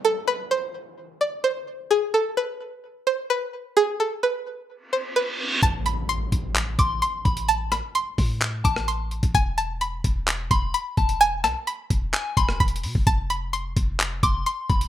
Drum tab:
HH |------------------------------------------------|------------------------------------------------|------------------------------------------------|x-----x-----x-----x-----x-----x-----x-----x--x--|
CP |------------------------------------------------|------------------------------------------------|------------------------------------------------|------------------------x-----------------------|
SD |------------------------------------------------|------------------------------------------------|------------------------------------------------|------------------------------------------------|
BD |------------------------------------------------|------------------------------------------------|------------------------------------------------|o-----------------o-----------o-----------o-----|

HH |x-----x-----x-----o-----x-----x-----x-----x--x--|x-----x-----x-----x-----x-----x-----x-----x--x--|x-----x-----x-----x-----x-----x-----x-x-x-o-----|x-----x-----x-----x-----x-----x-----x-----x--x--|
CP |------------------------x-----------------------|------------------------x-----------------------|------------------------x-----------------------|------------------------x-----------------------|
SD |------r--------------------------r--------------|------------------------------------------------|------r--------------------------r--------------|------------------------------------------------|
BD |------------------o-----------o--------------o--|o-----------------o-----------o-----------o-----|------------------o-----------o-----o--------o--|o-----------------o-----------o-----------o-----|